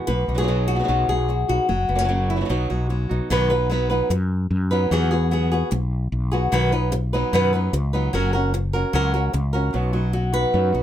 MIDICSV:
0, 0, Header, 1, 5, 480
1, 0, Start_track
1, 0, Key_signature, 5, "major"
1, 0, Tempo, 402414
1, 88, Time_signature, 4, 2, 24, 8
1, 12917, End_track
2, 0, Start_track
2, 0, Title_t, "Nylon-string guitar"
2, 0, Program_c, 0, 24
2, 0, Note_on_c, 0, 59, 37
2, 0, Note_on_c, 0, 66, 43
2, 85, Note_on_c, 0, 71, 86
2, 92, Note_on_c, 0, 47, 62
2, 332, Note_off_c, 0, 59, 0
2, 343, Note_on_c, 0, 63, 38
2, 446, Note_off_c, 0, 71, 0
2, 451, Note_on_c, 0, 68, 79
2, 487, Note_off_c, 0, 66, 0
2, 577, Note_on_c, 0, 54, 53
2, 808, Note_on_c, 0, 66, 80
2, 1053, Note_off_c, 0, 54, 0
2, 1053, Note_on_c, 0, 54, 51
2, 1286, Note_off_c, 0, 68, 0
2, 1300, Note_on_c, 0, 68, 76
2, 1532, Note_off_c, 0, 66, 0
2, 1549, Note_on_c, 0, 66, 42
2, 1776, Note_off_c, 0, 66, 0
2, 1781, Note_on_c, 0, 66, 78
2, 1989, Note_off_c, 0, 47, 0
2, 1994, Note_off_c, 0, 63, 0
2, 2013, Note_off_c, 0, 54, 0
2, 2013, Note_on_c, 0, 54, 61
2, 2019, Note_off_c, 0, 68, 0
2, 2250, Note_on_c, 0, 59, 41
2, 2369, Note_off_c, 0, 59, 0
2, 2369, Note_on_c, 0, 61, 34
2, 2473, Note_off_c, 0, 61, 0
2, 2487, Note_on_c, 0, 61, 56
2, 2738, Note_off_c, 0, 66, 0
2, 2742, Note_on_c, 0, 64, 65
2, 2945, Note_off_c, 0, 61, 0
2, 2975, Note_on_c, 0, 47, 59
2, 2978, Note_off_c, 0, 64, 0
2, 2983, Note_on_c, 0, 63, 66
2, 3206, Note_off_c, 0, 54, 0
2, 3220, Note_on_c, 0, 54, 38
2, 3446, Note_off_c, 0, 54, 0
2, 3460, Note_on_c, 0, 54, 53
2, 3694, Note_off_c, 0, 63, 0
2, 3709, Note_on_c, 0, 63, 41
2, 3909, Note_off_c, 0, 47, 0
2, 3916, Note_off_c, 0, 63, 0
2, 3936, Note_off_c, 0, 54, 0
2, 3939, Note_on_c, 0, 47, 84
2, 3949, Note_on_c, 0, 51, 76
2, 3950, Note_on_c, 0, 54, 82
2, 3952, Note_on_c, 0, 59, 76
2, 3961, Note_on_c, 0, 63, 74
2, 3964, Note_on_c, 0, 71, 85
2, 4159, Note_off_c, 0, 71, 0
2, 4166, Note_off_c, 0, 63, 0
2, 4170, Note_off_c, 0, 47, 0
2, 4173, Note_on_c, 0, 71, 56
2, 4174, Note_off_c, 0, 59, 0
2, 4175, Note_off_c, 0, 51, 0
2, 4176, Note_off_c, 0, 54, 0
2, 4181, Note_on_c, 0, 63, 51
2, 4188, Note_on_c, 0, 59, 44
2, 4198, Note_on_c, 0, 54, 45
2, 4394, Note_off_c, 0, 54, 0
2, 4407, Note_off_c, 0, 71, 0
2, 4409, Note_on_c, 0, 54, 54
2, 4410, Note_off_c, 0, 59, 0
2, 4411, Note_off_c, 0, 63, 0
2, 4424, Note_on_c, 0, 59, 55
2, 4431, Note_on_c, 0, 63, 66
2, 4437, Note_on_c, 0, 71, 55
2, 4633, Note_off_c, 0, 71, 0
2, 4645, Note_off_c, 0, 54, 0
2, 4645, Note_off_c, 0, 63, 0
2, 4647, Note_on_c, 0, 71, 55
2, 4650, Note_off_c, 0, 59, 0
2, 4660, Note_on_c, 0, 63, 52
2, 4664, Note_on_c, 0, 59, 50
2, 4672, Note_on_c, 0, 54, 46
2, 4884, Note_off_c, 0, 71, 0
2, 4888, Note_off_c, 0, 63, 0
2, 4889, Note_off_c, 0, 54, 0
2, 4890, Note_off_c, 0, 59, 0
2, 5615, Note_on_c, 0, 71, 56
2, 5626, Note_on_c, 0, 63, 49
2, 5635, Note_on_c, 0, 59, 49
2, 5641, Note_on_c, 0, 54, 52
2, 5848, Note_off_c, 0, 71, 0
2, 5853, Note_off_c, 0, 54, 0
2, 5853, Note_off_c, 0, 63, 0
2, 5858, Note_off_c, 0, 59, 0
2, 5860, Note_on_c, 0, 52, 70
2, 5868, Note_on_c, 0, 54, 68
2, 5871, Note_on_c, 0, 59, 77
2, 5875, Note_on_c, 0, 66, 82
2, 5884, Note_on_c, 0, 68, 82
2, 6079, Note_off_c, 0, 68, 0
2, 6090, Note_off_c, 0, 52, 0
2, 6092, Note_off_c, 0, 66, 0
2, 6093, Note_on_c, 0, 68, 53
2, 6094, Note_off_c, 0, 54, 0
2, 6096, Note_off_c, 0, 59, 0
2, 6106, Note_on_c, 0, 66, 53
2, 6121, Note_on_c, 0, 59, 42
2, 6327, Note_off_c, 0, 68, 0
2, 6329, Note_off_c, 0, 59, 0
2, 6333, Note_off_c, 0, 66, 0
2, 6337, Note_on_c, 0, 54, 52
2, 6343, Note_on_c, 0, 59, 63
2, 6352, Note_on_c, 0, 66, 54
2, 6360, Note_on_c, 0, 68, 61
2, 6565, Note_off_c, 0, 68, 0
2, 6568, Note_off_c, 0, 54, 0
2, 6571, Note_off_c, 0, 59, 0
2, 6576, Note_off_c, 0, 66, 0
2, 6579, Note_on_c, 0, 68, 59
2, 6595, Note_on_c, 0, 66, 50
2, 6606, Note_on_c, 0, 59, 49
2, 6805, Note_off_c, 0, 66, 0
2, 6809, Note_off_c, 0, 59, 0
2, 6809, Note_off_c, 0, 68, 0
2, 7533, Note_on_c, 0, 68, 51
2, 7547, Note_on_c, 0, 66, 54
2, 7558, Note_on_c, 0, 59, 46
2, 7765, Note_off_c, 0, 68, 0
2, 7772, Note_off_c, 0, 66, 0
2, 7775, Note_on_c, 0, 47, 73
2, 7778, Note_off_c, 0, 59, 0
2, 7779, Note_on_c, 0, 51, 82
2, 7784, Note_on_c, 0, 54, 85
2, 7792, Note_on_c, 0, 59, 78
2, 7795, Note_on_c, 0, 63, 83
2, 7798, Note_on_c, 0, 71, 89
2, 8004, Note_off_c, 0, 71, 0
2, 8006, Note_off_c, 0, 47, 0
2, 8008, Note_off_c, 0, 51, 0
2, 8010, Note_off_c, 0, 63, 0
2, 8011, Note_off_c, 0, 54, 0
2, 8015, Note_off_c, 0, 59, 0
2, 8019, Note_on_c, 0, 71, 58
2, 8024, Note_on_c, 0, 63, 57
2, 8032, Note_on_c, 0, 59, 51
2, 8039, Note_on_c, 0, 54, 47
2, 8242, Note_off_c, 0, 54, 0
2, 8242, Note_off_c, 0, 59, 0
2, 8248, Note_off_c, 0, 71, 0
2, 8251, Note_off_c, 0, 63, 0
2, 8505, Note_on_c, 0, 71, 56
2, 8515, Note_on_c, 0, 63, 51
2, 8521, Note_on_c, 0, 59, 52
2, 8528, Note_on_c, 0, 54, 43
2, 8731, Note_off_c, 0, 71, 0
2, 8736, Note_off_c, 0, 63, 0
2, 8739, Note_off_c, 0, 59, 0
2, 8742, Note_off_c, 0, 54, 0
2, 8743, Note_on_c, 0, 47, 75
2, 8748, Note_on_c, 0, 51, 76
2, 8758, Note_on_c, 0, 54, 80
2, 8760, Note_on_c, 0, 59, 89
2, 8768, Note_on_c, 0, 63, 87
2, 8770, Note_on_c, 0, 71, 93
2, 8965, Note_off_c, 0, 71, 0
2, 8970, Note_off_c, 0, 47, 0
2, 8972, Note_off_c, 0, 51, 0
2, 8977, Note_off_c, 0, 54, 0
2, 8978, Note_off_c, 0, 59, 0
2, 8979, Note_off_c, 0, 63, 0
2, 8980, Note_on_c, 0, 71, 57
2, 8993, Note_on_c, 0, 63, 54
2, 9003, Note_on_c, 0, 59, 47
2, 9011, Note_on_c, 0, 54, 43
2, 9208, Note_off_c, 0, 71, 0
2, 9214, Note_off_c, 0, 63, 0
2, 9215, Note_off_c, 0, 54, 0
2, 9216, Note_off_c, 0, 59, 0
2, 9461, Note_on_c, 0, 71, 52
2, 9470, Note_on_c, 0, 63, 56
2, 9476, Note_on_c, 0, 59, 48
2, 9486, Note_on_c, 0, 54, 45
2, 9684, Note_off_c, 0, 54, 0
2, 9688, Note_off_c, 0, 71, 0
2, 9692, Note_off_c, 0, 63, 0
2, 9695, Note_off_c, 0, 59, 0
2, 9699, Note_on_c, 0, 54, 83
2, 9708, Note_on_c, 0, 61, 83
2, 9716, Note_on_c, 0, 66, 79
2, 9718, Note_on_c, 0, 70, 77
2, 9921, Note_off_c, 0, 70, 0
2, 9926, Note_off_c, 0, 54, 0
2, 9931, Note_off_c, 0, 61, 0
2, 9935, Note_off_c, 0, 66, 0
2, 9935, Note_on_c, 0, 70, 54
2, 9954, Note_on_c, 0, 66, 51
2, 9964, Note_on_c, 0, 61, 49
2, 10164, Note_off_c, 0, 70, 0
2, 10171, Note_off_c, 0, 61, 0
2, 10174, Note_off_c, 0, 66, 0
2, 10417, Note_on_c, 0, 70, 54
2, 10429, Note_on_c, 0, 66, 46
2, 10442, Note_on_c, 0, 61, 44
2, 10645, Note_off_c, 0, 70, 0
2, 10651, Note_off_c, 0, 66, 0
2, 10652, Note_off_c, 0, 61, 0
2, 10655, Note_on_c, 0, 54, 78
2, 10667, Note_on_c, 0, 61, 76
2, 10676, Note_on_c, 0, 66, 78
2, 10680, Note_on_c, 0, 70, 81
2, 10884, Note_off_c, 0, 54, 0
2, 10884, Note_off_c, 0, 70, 0
2, 10889, Note_off_c, 0, 61, 0
2, 10894, Note_off_c, 0, 66, 0
2, 10898, Note_on_c, 0, 70, 57
2, 10909, Note_on_c, 0, 66, 51
2, 10926, Note_on_c, 0, 61, 40
2, 11121, Note_off_c, 0, 61, 0
2, 11125, Note_off_c, 0, 70, 0
2, 11131, Note_off_c, 0, 66, 0
2, 11366, Note_on_c, 0, 70, 58
2, 11381, Note_on_c, 0, 66, 54
2, 11390, Note_on_c, 0, 61, 44
2, 11599, Note_off_c, 0, 70, 0
2, 11606, Note_off_c, 0, 66, 0
2, 11610, Note_off_c, 0, 61, 0
2, 11615, Note_on_c, 0, 47, 65
2, 11847, Note_on_c, 0, 54, 57
2, 12086, Note_on_c, 0, 66, 76
2, 12328, Note_on_c, 0, 71, 99
2, 12803, Note_off_c, 0, 66, 0
2, 12818, Note_on_c, 0, 66, 46
2, 12917, Note_off_c, 0, 47, 0
2, 12917, Note_off_c, 0, 54, 0
2, 12917, Note_off_c, 0, 66, 0
2, 12917, Note_off_c, 0, 71, 0
2, 12917, End_track
3, 0, Start_track
3, 0, Title_t, "Nylon-string guitar"
3, 0, Program_c, 1, 24
3, 409, Note_on_c, 1, 54, 37
3, 413, Note_on_c, 1, 59, 43
3, 417, Note_on_c, 1, 63, 41
3, 422, Note_on_c, 1, 66, 45
3, 447, Note_off_c, 1, 54, 0
3, 455, Note_off_c, 1, 59, 0
3, 458, Note_off_c, 1, 63, 0
3, 461, Note_off_c, 1, 66, 0
3, 461, Note_on_c, 1, 54, 45
3, 469, Note_on_c, 1, 59, 46
3, 472, Note_on_c, 1, 63, 47
3, 475, Note_on_c, 1, 66, 53
3, 497, Note_off_c, 1, 54, 0
3, 504, Note_off_c, 1, 59, 0
3, 509, Note_off_c, 1, 63, 0
3, 511, Note_on_c, 1, 54, 55
3, 512, Note_off_c, 1, 66, 0
3, 519, Note_on_c, 1, 59, 57
3, 523, Note_on_c, 1, 63, 59
3, 527, Note_on_c, 1, 66, 59
3, 561, Note_off_c, 1, 54, 0
3, 562, Note_off_c, 1, 59, 0
3, 564, Note_off_c, 1, 63, 0
3, 568, Note_on_c, 1, 47, 61
3, 571, Note_off_c, 1, 66, 0
3, 575, Note_on_c, 1, 54, 59
3, 577, Note_on_c, 1, 59, 62
3, 579, Note_on_c, 1, 63, 63
3, 586, Note_on_c, 1, 66, 60
3, 878, Note_off_c, 1, 54, 0
3, 884, Note_off_c, 1, 59, 0
3, 890, Note_off_c, 1, 63, 0
3, 893, Note_off_c, 1, 66, 0
3, 893, Note_on_c, 1, 54, 37
3, 898, Note_on_c, 1, 59, 39
3, 905, Note_on_c, 1, 63, 43
3, 907, Note_on_c, 1, 66, 42
3, 933, Note_off_c, 1, 54, 0
3, 936, Note_off_c, 1, 59, 0
3, 938, Note_off_c, 1, 63, 0
3, 945, Note_off_c, 1, 66, 0
3, 947, Note_on_c, 1, 54, 51
3, 950, Note_on_c, 1, 59, 48
3, 952, Note_on_c, 1, 63, 46
3, 960, Note_on_c, 1, 66, 56
3, 983, Note_off_c, 1, 54, 0
3, 994, Note_off_c, 1, 59, 0
3, 995, Note_off_c, 1, 63, 0
3, 997, Note_on_c, 1, 54, 56
3, 1000, Note_off_c, 1, 66, 0
3, 1008, Note_on_c, 1, 59, 55
3, 1009, Note_on_c, 1, 63, 59
3, 1015, Note_on_c, 1, 66, 62
3, 1038, Note_off_c, 1, 47, 0
3, 1044, Note_off_c, 1, 54, 0
3, 1046, Note_off_c, 1, 59, 0
3, 1048, Note_off_c, 1, 63, 0
3, 1052, Note_off_c, 1, 66, 0
3, 1052, Note_on_c, 1, 47, 64
3, 1058, Note_on_c, 1, 54, 56
3, 1061, Note_on_c, 1, 59, 59
3, 1062, Note_on_c, 1, 63, 67
3, 1067, Note_on_c, 1, 66, 68
3, 1278, Note_off_c, 1, 66, 0
3, 1284, Note_off_c, 1, 47, 0
3, 1287, Note_off_c, 1, 54, 0
3, 1288, Note_off_c, 1, 59, 0
3, 1289, Note_off_c, 1, 63, 0
3, 1292, Note_on_c, 1, 66, 39
3, 1302, Note_on_c, 1, 63, 31
3, 1318, Note_on_c, 1, 59, 28
3, 1524, Note_off_c, 1, 66, 0
3, 1525, Note_off_c, 1, 59, 0
3, 1529, Note_off_c, 1, 63, 0
3, 1771, Note_on_c, 1, 66, 42
3, 1780, Note_on_c, 1, 63, 32
3, 1795, Note_on_c, 1, 59, 28
3, 2004, Note_off_c, 1, 66, 0
3, 2009, Note_off_c, 1, 63, 0
3, 2016, Note_off_c, 1, 59, 0
3, 2330, Note_on_c, 1, 54, 36
3, 2332, Note_on_c, 1, 58, 43
3, 2335, Note_on_c, 1, 61, 39
3, 2340, Note_on_c, 1, 66, 41
3, 2369, Note_off_c, 1, 54, 0
3, 2371, Note_off_c, 1, 58, 0
3, 2376, Note_off_c, 1, 61, 0
3, 2383, Note_off_c, 1, 66, 0
3, 2383, Note_on_c, 1, 54, 45
3, 2385, Note_on_c, 1, 58, 46
3, 2390, Note_on_c, 1, 61, 45
3, 2397, Note_on_c, 1, 66, 53
3, 2419, Note_off_c, 1, 54, 0
3, 2425, Note_off_c, 1, 58, 0
3, 2428, Note_off_c, 1, 61, 0
3, 2433, Note_on_c, 1, 54, 53
3, 2434, Note_off_c, 1, 66, 0
3, 2440, Note_on_c, 1, 58, 51
3, 2442, Note_on_c, 1, 61, 58
3, 2448, Note_on_c, 1, 66, 62
3, 2478, Note_off_c, 1, 54, 0
3, 2481, Note_off_c, 1, 61, 0
3, 2482, Note_off_c, 1, 58, 0
3, 2487, Note_on_c, 1, 49, 62
3, 2488, Note_off_c, 1, 66, 0
3, 2492, Note_on_c, 1, 54, 64
3, 2495, Note_on_c, 1, 61, 59
3, 2496, Note_on_c, 1, 58, 63
3, 2502, Note_on_c, 1, 66, 68
3, 2801, Note_off_c, 1, 54, 0
3, 2815, Note_off_c, 1, 58, 0
3, 2815, Note_on_c, 1, 54, 40
3, 2818, Note_off_c, 1, 66, 0
3, 2819, Note_on_c, 1, 59, 37
3, 2822, Note_off_c, 1, 61, 0
3, 2827, Note_on_c, 1, 63, 40
3, 2832, Note_on_c, 1, 66, 45
3, 2856, Note_off_c, 1, 54, 0
3, 2860, Note_off_c, 1, 59, 0
3, 2863, Note_off_c, 1, 63, 0
3, 2869, Note_off_c, 1, 66, 0
3, 2870, Note_on_c, 1, 54, 43
3, 2874, Note_on_c, 1, 59, 41
3, 2878, Note_on_c, 1, 63, 44
3, 2883, Note_on_c, 1, 66, 45
3, 2909, Note_off_c, 1, 54, 0
3, 2912, Note_off_c, 1, 59, 0
3, 2915, Note_off_c, 1, 63, 0
3, 2920, Note_off_c, 1, 66, 0
3, 2923, Note_on_c, 1, 54, 51
3, 2926, Note_on_c, 1, 59, 51
3, 2930, Note_on_c, 1, 63, 61
3, 2935, Note_on_c, 1, 66, 52
3, 2964, Note_off_c, 1, 49, 0
3, 2964, Note_off_c, 1, 54, 0
3, 2968, Note_off_c, 1, 59, 0
3, 2972, Note_off_c, 1, 63, 0
3, 2975, Note_off_c, 1, 66, 0
3, 2978, Note_on_c, 1, 47, 55
3, 2979, Note_on_c, 1, 54, 60
3, 2982, Note_on_c, 1, 59, 64
3, 2986, Note_on_c, 1, 63, 62
3, 2990, Note_on_c, 1, 66, 64
3, 3200, Note_off_c, 1, 66, 0
3, 3209, Note_off_c, 1, 47, 0
3, 3209, Note_off_c, 1, 54, 0
3, 3211, Note_off_c, 1, 59, 0
3, 3213, Note_off_c, 1, 63, 0
3, 3214, Note_on_c, 1, 66, 40
3, 3228, Note_on_c, 1, 63, 34
3, 3237, Note_on_c, 1, 59, 28
3, 3445, Note_off_c, 1, 59, 0
3, 3446, Note_off_c, 1, 63, 0
3, 3448, Note_off_c, 1, 66, 0
3, 3689, Note_on_c, 1, 66, 38
3, 3703, Note_on_c, 1, 63, 32
3, 3715, Note_on_c, 1, 59, 30
3, 3925, Note_off_c, 1, 66, 0
3, 3932, Note_off_c, 1, 63, 0
3, 3938, Note_off_c, 1, 59, 0
3, 11604, Note_on_c, 1, 47, 52
3, 11609, Note_on_c, 1, 54, 52
3, 11619, Note_on_c, 1, 59, 58
3, 11625, Note_on_c, 1, 63, 57
3, 11634, Note_on_c, 1, 66, 68
3, 11828, Note_off_c, 1, 66, 0
3, 11837, Note_off_c, 1, 47, 0
3, 11840, Note_off_c, 1, 54, 0
3, 11842, Note_on_c, 1, 66, 39
3, 11844, Note_off_c, 1, 63, 0
3, 11845, Note_off_c, 1, 59, 0
3, 11858, Note_on_c, 1, 63, 34
3, 11869, Note_on_c, 1, 59, 34
3, 12076, Note_off_c, 1, 66, 0
3, 12080, Note_off_c, 1, 59, 0
3, 12084, Note_off_c, 1, 63, 0
3, 12317, Note_on_c, 1, 66, 41
3, 12335, Note_on_c, 1, 63, 38
3, 12342, Note_on_c, 1, 59, 38
3, 12553, Note_off_c, 1, 66, 0
3, 12555, Note_off_c, 1, 59, 0
3, 12559, Note_off_c, 1, 63, 0
3, 12559, Note_on_c, 1, 47, 52
3, 12563, Note_on_c, 1, 54, 56
3, 12569, Note_on_c, 1, 59, 65
3, 12573, Note_on_c, 1, 63, 59
3, 12585, Note_on_c, 1, 66, 65
3, 12778, Note_off_c, 1, 66, 0
3, 12792, Note_on_c, 1, 66, 37
3, 12794, Note_off_c, 1, 47, 0
3, 12795, Note_off_c, 1, 63, 0
3, 12796, Note_off_c, 1, 54, 0
3, 12799, Note_off_c, 1, 59, 0
3, 12809, Note_on_c, 1, 63, 37
3, 12817, Note_on_c, 1, 59, 29
3, 12917, Note_off_c, 1, 59, 0
3, 12917, Note_off_c, 1, 63, 0
3, 12917, Note_off_c, 1, 66, 0
3, 12917, End_track
4, 0, Start_track
4, 0, Title_t, "Fretless electric bass"
4, 0, Program_c, 2, 35
4, 98, Note_on_c, 2, 35, 80
4, 305, Note_off_c, 2, 35, 0
4, 335, Note_on_c, 2, 35, 77
4, 967, Note_off_c, 2, 35, 0
4, 1060, Note_on_c, 2, 35, 76
4, 1268, Note_off_c, 2, 35, 0
4, 1293, Note_on_c, 2, 35, 66
4, 1716, Note_off_c, 2, 35, 0
4, 1786, Note_on_c, 2, 35, 68
4, 1887, Note_off_c, 2, 35, 0
4, 2022, Note_on_c, 2, 30, 75
4, 2230, Note_off_c, 2, 30, 0
4, 2257, Note_on_c, 2, 30, 81
4, 2890, Note_off_c, 2, 30, 0
4, 2981, Note_on_c, 2, 35, 75
4, 3191, Note_off_c, 2, 35, 0
4, 3232, Note_on_c, 2, 35, 67
4, 3648, Note_off_c, 2, 35, 0
4, 3710, Note_on_c, 2, 35, 70
4, 3811, Note_off_c, 2, 35, 0
4, 3941, Note_on_c, 2, 35, 83
4, 4783, Note_off_c, 2, 35, 0
4, 4890, Note_on_c, 2, 42, 83
4, 5315, Note_off_c, 2, 42, 0
4, 5375, Note_on_c, 2, 42, 88
4, 5798, Note_off_c, 2, 42, 0
4, 5857, Note_on_c, 2, 40, 82
4, 6699, Note_off_c, 2, 40, 0
4, 6821, Note_on_c, 2, 35, 88
4, 7240, Note_off_c, 2, 35, 0
4, 7302, Note_on_c, 2, 35, 91
4, 7721, Note_off_c, 2, 35, 0
4, 7783, Note_on_c, 2, 35, 86
4, 8621, Note_off_c, 2, 35, 0
4, 8744, Note_on_c, 2, 42, 83
4, 9160, Note_off_c, 2, 42, 0
4, 9221, Note_on_c, 2, 37, 92
4, 9638, Note_off_c, 2, 37, 0
4, 9703, Note_on_c, 2, 30, 90
4, 10539, Note_off_c, 2, 30, 0
4, 10659, Note_on_c, 2, 37, 85
4, 11076, Note_off_c, 2, 37, 0
4, 11142, Note_on_c, 2, 37, 93
4, 11557, Note_off_c, 2, 37, 0
4, 11625, Note_on_c, 2, 35, 80
4, 12459, Note_off_c, 2, 35, 0
4, 12571, Note_on_c, 2, 42, 86
4, 12780, Note_off_c, 2, 42, 0
4, 12811, Note_on_c, 2, 35, 77
4, 12917, Note_off_c, 2, 35, 0
4, 12917, End_track
5, 0, Start_track
5, 0, Title_t, "Muted nylon-string guitar strokes"
5, 99, Note_on_c, 9, 29, 51
5, 218, Note_off_c, 9, 29, 0
5, 1531, Note_on_c, 9, 29, 45
5, 1650, Note_off_c, 9, 29, 0
5, 2014, Note_on_c, 9, 29, 56
5, 2134, Note_off_c, 9, 29, 0
5, 3452, Note_on_c, 9, 29, 47
5, 3571, Note_off_c, 9, 29, 0
5, 4893, Note_on_c, 9, 29, 61
5, 5013, Note_off_c, 9, 29, 0
5, 6810, Note_on_c, 9, 29, 73
5, 6929, Note_off_c, 9, 29, 0
5, 8253, Note_on_c, 9, 29, 67
5, 8372, Note_off_c, 9, 29, 0
5, 9223, Note_on_c, 9, 29, 68
5, 9343, Note_off_c, 9, 29, 0
5, 10184, Note_on_c, 9, 29, 70
5, 10303, Note_off_c, 9, 29, 0
5, 11134, Note_on_c, 9, 29, 68
5, 11253, Note_off_c, 9, 29, 0
5, 12087, Note_on_c, 9, 29, 50
5, 12206, Note_off_c, 9, 29, 0
5, 12917, End_track
0, 0, End_of_file